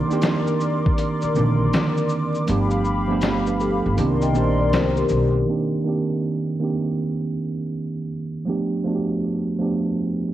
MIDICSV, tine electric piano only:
0, 0, Header, 1, 2, 480
1, 0, Start_track
1, 0, Tempo, 750000
1, 1582, Time_signature, 4, 2, 24, 8
1, 6615, End_track
2, 0, Start_track
2, 0, Title_t, "Tine electric piano"
2, 0, Program_c, 0, 4
2, 0, Control_c, 0, 64, 127
2, 0, Note_on_c, 0, 51, 103
2, 0, Note_on_c, 0, 58, 88
2, 0, Note_on_c, 0, 60, 76
2, 0, Note_on_c, 0, 62, 81
2, 0, Note_on_c, 0, 67, 89
2, 53, Note_off_c, 0, 51, 0
2, 53, Note_on_c, 0, 51, 88
2, 62, Note_off_c, 0, 58, 0
2, 62, Note_on_c, 0, 58, 81
2, 67, Note_off_c, 0, 60, 0
2, 67, Note_on_c, 0, 60, 69
2, 76, Note_off_c, 0, 62, 0
2, 76, Note_on_c, 0, 62, 76
2, 82, Note_off_c, 0, 67, 0
2, 82, Note_on_c, 0, 67, 99
2, 794, Note_off_c, 0, 51, 0
2, 798, Note_off_c, 0, 58, 0
2, 801, Note_off_c, 0, 60, 0
2, 805, Note_off_c, 0, 62, 0
2, 808, Note_off_c, 0, 67, 0
2, 859, Note_on_c, 0, 50, 64
2, 864, Note_on_c, 0, 58, 71
2, 872, Note_on_c, 0, 60, 73
2, 879, Note_on_c, 0, 62, 75
2, 885, Note_on_c, 0, 70, 90
2, 900, Note_on_c, 0, 51, 85
2, 914, Note_off_c, 0, 50, 0
2, 1527, Note_off_c, 0, 58, 0
2, 1531, Note_off_c, 0, 60, 0
2, 1534, Note_off_c, 0, 62, 0
2, 1537, Note_off_c, 0, 70, 0
2, 1545, Note_off_c, 0, 51, 0
2, 1576, Note_on_c, 0, 53, 77
2, 1582, Note_on_c, 0, 57, 73
2, 1590, Control_c, 0, 64, 0
2, 1590, Note_on_c, 0, 59, 82
2, 1597, Note_on_c, 0, 62, 84
2, 1603, Note_on_c, 0, 67, 90
2, 1710, Control_c, 0, 64, 127
2, 1923, Note_off_c, 0, 53, 0
2, 1926, Note_off_c, 0, 57, 0
2, 1930, Note_off_c, 0, 59, 0
2, 1933, Note_off_c, 0, 62, 0
2, 1936, Note_off_c, 0, 67, 0
2, 1971, Note_on_c, 0, 53, 81
2, 1978, Note_on_c, 0, 57, 76
2, 1985, Note_on_c, 0, 59, 80
2, 1992, Note_on_c, 0, 62, 79
2, 1999, Note_on_c, 0, 67, 93
2, 2066, Note_off_c, 0, 59, 0
2, 2069, Note_off_c, 0, 62, 0
2, 2072, Note_off_c, 0, 67, 0
2, 2221, Note_on_c, 0, 71, 53
2, 2224, Note_on_c, 0, 62, 52
2, 2299, Note_off_c, 0, 71, 0
2, 2301, Note_off_c, 0, 62, 0
2, 2308, Note_on_c, 0, 69, 66
2, 2454, Note_off_c, 0, 69, 0
2, 2470, Note_on_c, 0, 67, 64
2, 2475, Note_on_c, 0, 59, 57
2, 2536, Note_on_c, 0, 51, 78
2, 2539, Note_off_c, 0, 53, 0
2, 2542, Note_off_c, 0, 57, 0
2, 2542, Note_on_c, 0, 58, 84
2, 2549, Control_c, 0, 64, 0
2, 2549, Note_on_c, 0, 60, 93
2, 2555, Note_off_c, 0, 67, 0
2, 2556, Note_on_c, 0, 62, 83
2, 2562, Note_on_c, 0, 67, 92
2, 2645, Control_c, 0, 64, 127
2, 2695, Note_off_c, 0, 59, 0
2, 2760, Note_off_c, 0, 51, 0
2, 2763, Note_off_c, 0, 58, 0
2, 2767, Note_off_c, 0, 60, 0
2, 2770, Note_off_c, 0, 62, 0
2, 2770, Note_on_c, 0, 51, 79
2, 2773, Note_off_c, 0, 67, 0
2, 2775, Note_on_c, 0, 58, 75
2, 2783, Note_on_c, 0, 60, 67
2, 2789, Note_on_c, 0, 62, 77
2, 2798, Note_on_c, 0, 67, 86
2, 3440, Note_off_c, 0, 51, 0
2, 3442, Note_off_c, 0, 58, 0
2, 3446, Note_off_c, 0, 60, 0
2, 3449, Note_off_c, 0, 62, 0
2, 3454, Note_off_c, 0, 67, 0
2, 3496, Note_on_c, 0, 51, 77
2, 3503, Note_on_c, 0, 58, 69
2, 3509, Note_on_c, 0, 60, 65
2, 3510, Control_c, 0, 64, 0
2, 3518, Note_on_c, 0, 62, 71
2, 3524, Note_on_c, 0, 67, 86
2, 3619, Control_c, 0, 64, 127
2, 3720, Note_off_c, 0, 51, 0
2, 3724, Note_off_c, 0, 58, 0
2, 3727, Note_off_c, 0, 60, 0
2, 3731, Note_off_c, 0, 62, 0
2, 3734, Note_off_c, 0, 67, 0
2, 3740, Note_on_c, 0, 51, 68
2, 3746, Note_on_c, 0, 58, 68
2, 3754, Note_on_c, 0, 60, 64
2, 3760, Note_on_c, 0, 62, 62
2, 3768, Note_on_c, 0, 67, 76
2, 4184, Note_off_c, 0, 51, 0
2, 4187, Note_off_c, 0, 58, 0
2, 4190, Note_off_c, 0, 60, 0
2, 4194, Note_off_c, 0, 62, 0
2, 4198, Note_off_c, 0, 67, 0
2, 4218, Note_on_c, 0, 51, 64
2, 4226, Note_on_c, 0, 58, 71
2, 4232, Note_on_c, 0, 60, 68
2, 4240, Note_on_c, 0, 62, 59
2, 4247, Note_on_c, 0, 67, 79
2, 5105, Note_off_c, 0, 51, 0
2, 5109, Note_off_c, 0, 58, 0
2, 5112, Note_off_c, 0, 60, 0
2, 5116, Note_off_c, 0, 62, 0
2, 5119, Note_off_c, 0, 67, 0
2, 5411, Note_on_c, 0, 53, 79
2, 5418, Note_on_c, 0, 57, 63
2, 5425, Note_on_c, 0, 59, 72
2, 5430, Control_c, 0, 64, 0
2, 5431, Note_on_c, 0, 62, 67
2, 5438, Note_on_c, 0, 67, 84
2, 5542, Control_c, 0, 64, 127
2, 5638, Note_off_c, 0, 53, 0
2, 5641, Note_off_c, 0, 57, 0
2, 5645, Note_off_c, 0, 59, 0
2, 5648, Note_off_c, 0, 62, 0
2, 5651, Note_off_c, 0, 67, 0
2, 5658, Note_on_c, 0, 53, 73
2, 5666, Note_on_c, 0, 57, 69
2, 5672, Note_on_c, 0, 59, 64
2, 5681, Note_on_c, 0, 62, 67
2, 5688, Note_on_c, 0, 66, 63
2, 5729, Note_off_c, 0, 66, 0
2, 5729, Note_on_c, 0, 67, 74
2, 6103, Note_off_c, 0, 53, 0
2, 6107, Note_off_c, 0, 57, 0
2, 6110, Note_off_c, 0, 59, 0
2, 6114, Note_off_c, 0, 62, 0
2, 6134, Note_on_c, 0, 53, 75
2, 6138, Note_off_c, 0, 67, 0
2, 6140, Note_on_c, 0, 57, 63
2, 6148, Note_on_c, 0, 59, 70
2, 6153, Note_on_c, 0, 62, 72
2, 6161, Note_on_c, 0, 67, 75
2, 6615, Note_off_c, 0, 53, 0
2, 6615, Note_off_c, 0, 57, 0
2, 6615, Note_off_c, 0, 59, 0
2, 6615, Note_off_c, 0, 62, 0
2, 6615, Note_off_c, 0, 67, 0
2, 6615, End_track
0, 0, End_of_file